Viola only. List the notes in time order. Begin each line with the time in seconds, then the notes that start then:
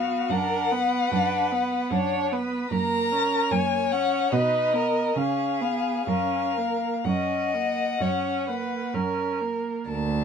Already playing: B3
0.30 D4
0.72 B3
1.13 D4
1.52 B3
1.92 D4
2.32 B3
2.72 A#3
3.12 C#4
3.52 A#3
3.93 C#4
4.33 D#4
4.73 B3
5.17 C#4
5.61 B3
6.08 C#4
6.57 A#3
7.07 C#4
7.54 A#3
8.01 C#4
8.49 A#3
8.94 C#4
9.41 A#3